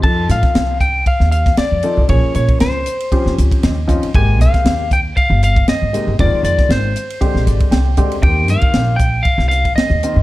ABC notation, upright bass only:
X:1
M:4/4
L:1/16
Q:"Swing 16ths" 1/4=117
K:Eblyd
V:1 name="Upright bass" clef=bass
F,,2 A,, z C,,4 z E,,3 z F,, z C,, | B,,, z B,, z _D,,2 z3 E,, D,, z E,,3 z | _A,,,2 C,, z E,,4 z G,,,3 z A,,, z G,,, | F,,, z F,, z _A,,,2 z3 B,,, A,,, z C,,2 D,,2 |
E,,2 G,, z B,,,4 z C,,3 z E,, z G,, |]